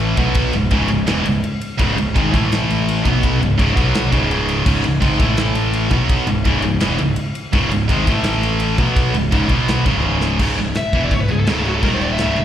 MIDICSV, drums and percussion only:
0, 0, Header, 1, 2, 480
1, 0, Start_track
1, 0, Key_signature, 4, "minor"
1, 0, Tempo, 358852
1, 480, Time_signature, 4, 2, 24, 8
1, 16649, End_track
2, 0, Start_track
2, 0, Title_t, "Drums"
2, 226, Note_on_c, 9, 51, 75
2, 233, Note_on_c, 9, 36, 108
2, 360, Note_off_c, 9, 51, 0
2, 367, Note_off_c, 9, 36, 0
2, 462, Note_on_c, 9, 51, 120
2, 473, Note_on_c, 9, 36, 127
2, 596, Note_off_c, 9, 51, 0
2, 607, Note_off_c, 9, 36, 0
2, 710, Note_on_c, 9, 51, 74
2, 844, Note_off_c, 9, 51, 0
2, 944, Note_on_c, 9, 51, 99
2, 953, Note_on_c, 9, 36, 107
2, 1078, Note_off_c, 9, 51, 0
2, 1087, Note_off_c, 9, 36, 0
2, 1181, Note_on_c, 9, 51, 72
2, 1314, Note_off_c, 9, 51, 0
2, 1430, Note_on_c, 9, 51, 105
2, 1442, Note_on_c, 9, 38, 125
2, 1564, Note_off_c, 9, 51, 0
2, 1576, Note_off_c, 9, 38, 0
2, 1679, Note_on_c, 9, 51, 79
2, 1813, Note_off_c, 9, 51, 0
2, 1921, Note_on_c, 9, 51, 105
2, 2055, Note_off_c, 9, 51, 0
2, 2158, Note_on_c, 9, 51, 86
2, 2292, Note_off_c, 9, 51, 0
2, 2400, Note_on_c, 9, 36, 122
2, 2400, Note_on_c, 9, 51, 127
2, 2533, Note_off_c, 9, 36, 0
2, 2534, Note_off_c, 9, 51, 0
2, 2650, Note_on_c, 9, 51, 81
2, 2783, Note_off_c, 9, 51, 0
2, 2887, Note_on_c, 9, 36, 105
2, 2895, Note_on_c, 9, 51, 101
2, 3021, Note_off_c, 9, 36, 0
2, 3028, Note_off_c, 9, 51, 0
2, 3127, Note_on_c, 9, 36, 104
2, 3141, Note_on_c, 9, 51, 80
2, 3260, Note_off_c, 9, 36, 0
2, 3274, Note_off_c, 9, 51, 0
2, 3370, Note_on_c, 9, 51, 111
2, 3382, Note_on_c, 9, 38, 119
2, 3504, Note_off_c, 9, 51, 0
2, 3516, Note_off_c, 9, 38, 0
2, 3617, Note_on_c, 9, 51, 74
2, 3751, Note_off_c, 9, 51, 0
2, 3859, Note_on_c, 9, 51, 110
2, 3993, Note_off_c, 9, 51, 0
2, 4086, Note_on_c, 9, 36, 104
2, 4098, Note_on_c, 9, 51, 73
2, 4219, Note_off_c, 9, 36, 0
2, 4232, Note_off_c, 9, 51, 0
2, 4325, Note_on_c, 9, 36, 117
2, 4334, Note_on_c, 9, 51, 110
2, 4459, Note_off_c, 9, 36, 0
2, 4468, Note_off_c, 9, 51, 0
2, 4584, Note_on_c, 9, 51, 66
2, 4717, Note_off_c, 9, 51, 0
2, 4805, Note_on_c, 9, 36, 110
2, 4807, Note_on_c, 9, 51, 106
2, 4939, Note_off_c, 9, 36, 0
2, 4941, Note_off_c, 9, 51, 0
2, 5044, Note_on_c, 9, 36, 108
2, 5053, Note_on_c, 9, 51, 77
2, 5178, Note_off_c, 9, 36, 0
2, 5187, Note_off_c, 9, 51, 0
2, 5279, Note_on_c, 9, 51, 100
2, 5291, Note_on_c, 9, 38, 121
2, 5412, Note_off_c, 9, 51, 0
2, 5424, Note_off_c, 9, 38, 0
2, 5518, Note_on_c, 9, 36, 108
2, 5526, Note_on_c, 9, 51, 69
2, 5652, Note_off_c, 9, 36, 0
2, 5660, Note_off_c, 9, 51, 0
2, 5765, Note_on_c, 9, 51, 100
2, 5898, Note_off_c, 9, 51, 0
2, 6001, Note_on_c, 9, 51, 82
2, 6134, Note_off_c, 9, 51, 0
2, 6236, Note_on_c, 9, 36, 123
2, 6242, Note_on_c, 9, 49, 113
2, 6370, Note_off_c, 9, 36, 0
2, 6375, Note_off_c, 9, 49, 0
2, 6473, Note_on_c, 9, 51, 76
2, 6607, Note_off_c, 9, 51, 0
2, 6713, Note_on_c, 9, 36, 111
2, 6715, Note_on_c, 9, 51, 115
2, 6847, Note_off_c, 9, 36, 0
2, 6849, Note_off_c, 9, 51, 0
2, 6952, Note_on_c, 9, 36, 116
2, 6956, Note_on_c, 9, 51, 74
2, 7086, Note_off_c, 9, 36, 0
2, 7090, Note_off_c, 9, 51, 0
2, 7184, Note_on_c, 9, 51, 105
2, 7196, Note_on_c, 9, 38, 127
2, 7318, Note_off_c, 9, 51, 0
2, 7330, Note_off_c, 9, 38, 0
2, 7427, Note_on_c, 9, 51, 78
2, 7561, Note_off_c, 9, 51, 0
2, 7670, Note_on_c, 9, 51, 112
2, 7804, Note_off_c, 9, 51, 0
2, 7901, Note_on_c, 9, 51, 81
2, 7907, Note_on_c, 9, 36, 103
2, 8035, Note_off_c, 9, 51, 0
2, 8041, Note_off_c, 9, 36, 0
2, 8153, Note_on_c, 9, 36, 124
2, 8153, Note_on_c, 9, 51, 117
2, 8286, Note_off_c, 9, 36, 0
2, 8287, Note_off_c, 9, 51, 0
2, 8385, Note_on_c, 9, 51, 75
2, 8518, Note_off_c, 9, 51, 0
2, 8630, Note_on_c, 9, 51, 99
2, 8631, Note_on_c, 9, 36, 110
2, 8763, Note_off_c, 9, 51, 0
2, 8764, Note_off_c, 9, 36, 0
2, 8858, Note_on_c, 9, 51, 71
2, 8992, Note_off_c, 9, 51, 0
2, 9100, Note_on_c, 9, 51, 102
2, 9112, Note_on_c, 9, 38, 115
2, 9234, Note_off_c, 9, 51, 0
2, 9246, Note_off_c, 9, 38, 0
2, 9343, Note_on_c, 9, 51, 71
2, 9477, Note_off_c, 9, 51, 0
2, 9579, Note_on_c, 9, 51, 112
2, 9712, Note_off_c, 9, 51, 0
2, 9832, Note_on_c, 9, 51, 81
2, 9966, Note_off_c, 9, 51, 0
2, 10070, Note_on_c, 9, 51, 109
2, 10075, Note_on_c, 9, 36, 122
2, 10203, Note_off_c, 9, 51, 0
2, 10209, Note_off_c, 9, 36, 0
2, 10319, Note_on_c, 9, 51, 74
2, 10453, Note_off_c, 9, 51, 0
2, 10557, Note_on_c, 9, 36, 108
2, 10567, Note_on_c, 9, 51, 109
2, 10691, Note_off_c, 9, 36, 0
2, 10701, Note_off_c, 9, 51, 0
2, 10797, Note_on_c, 9, 36, 97
2, 10808, Note_on_c, 9, 51, 79
2, 10931, Note_off_c, 9, 36, 0
2, 10942, Note_off_c, 9, 51, 0
2, 11017, Note_on_c, 9, 51, 115
2, 11029, Note_on_c, 9, 38, 110
2, 11151, Note_off_c, 9, 51, 0
2, 11163, Note_off_c, 9, 38, 0
2, 11279, Note_on_c, 9, 51, 82
2, 11412, Note_off_c, 9, 51, 0
2, 11500, Note_on_c, 9, 51, 123
2, 11633, Note_off_c, 9, 51, 0
2, 11746, Note_on_c, 9, 51, 89
2, 11748, Note_on_c, 9, 36, 106
2, 11880, Note_off_c, 9, 51, 0
2, 11881, Note_off_c, 9, 36, 0
2, 11988, Note_on_c, 9, 51, 127
2, 11991, Note_on_c, 9, 36, 127
2, 12122, Note_off_c, 9, 51, 0
2, 12125, Note_off_c, 9, 36, 0
2, 12231, Note_on_c, 9, 51, 73
2, 12364, Note_off_c, 9, 51, 0
2, 12469, Note_on_c, 9, 51, 113
2, 12471, Note_on_c, 9, 36, 118
2, 12602, Note_off_c, 9, 51, 0
2, 12604, Note_off_c, 9, 36, 0
2, 12695, Note_on_c, 9, 51, 77
2, 12705, Note_on_c, 9, 36, 102
2, 12829, Note_off_c, 9, 51, 0
2, 12839, Note_off_c, 9, 36, 0
2, 12952, Note_on_c, 9, 51, 103
2, 12964, Note_on_c, 9, 38, 117
2, 13085, Note_off_c, 9, 51, 0
2, 13097, Note_off_c, 9, 38, 0
2, 13185, Note_on_c, 9, 51, 71
2, 13188, Note_on_c, 9, 36, 107
2, 13319, Note_off_c, 9, 51, 0
2, 13322, Note_off_c, 9, 36, 0
2, 13410, Note_on_c, 9, 48, 69
2, 13543, Note_off_c, 9, 48, 0
2, 13662, Note_on_c, 9, 38, 90
2, 13795, Note_off_c, 9, 38, 0
2, 13903, Note_on_c, 9, 49, 125
2, 13903, Note_on_c, 9, 57, 92
2, 13904, Note_on_c, 9, 36, 107
2, 14037, Note_off_c, 9, 49, 0
2, 14037, Note_off_c, 9, 57, 0
2, 14038, Note_off_c, 9, 36, 0
2, 14152, Note_on_c, 9, 57, 54
2, 14286, Note_off_c, 9, 57, 0
2, 14375, Note_on_c, 9, 57, 86
2, 14387, Note_on_c, 9, 38, 106
2, 14509, Note_off_c, 9, 57, 0
2, 14521, Note_off_c, 9, 38, 0
2, 14621, Note_on_c, 9, 57, 62
2, 14622, Note_on_c, 9, 36, 103
2, 14755, Note_off_c, 9, 57, 0
2, 14756, Note_off_c, 9, 36, 0
2, 14863, Note_on_c, 9, 36, 93
2, 14869, Note_on_c, 9, 57, 90
2, 14997, Note_off_c, 9, 36, 0
2, 15003, Note_off_c, 9, 57, 0
2, 15092, Note_on_c, 9, 57, 59
2, 15226, Note_off_c, 9, 57, 0
2, 15337, Note_on_c, 9, 57, 91
2, 15349, Note_on_c, 9, 38, 113
2, 15471, Note_off_c, 9, 57, 0
2, 15483, Note_off_c, 9, 38, 0
2, 15583, Note_on_c, 9, 57, 59
2, 15717, Note_off_c, 9, 57, 0
2, 15822, Note_on_c, 9, 36, 110
2, 15824, Note_on_c, 9, 57, 92
2, 15956, Note_off_c, 9, 36, 0
2, 15958, Note_off_c, 9, 57, 0
2, 16071, Note_on_c, 9, 57, 58
2, 16205, Note_off_c, 9, 57, 0
2, 16291, Note_on_c, 9, 57, 81
2, 16303, Note_on_c, 9, 38, 109
2, 16425, Note_off_c, 9, 57, 0
2, 16437, Note_off_c, 9, 38, 0
2, 16536, Note_on_c, 9, 57, 58
2, 16649, Note_off_c, 9, 57, 0
2, 16649, End_track
0, 0, End_of_file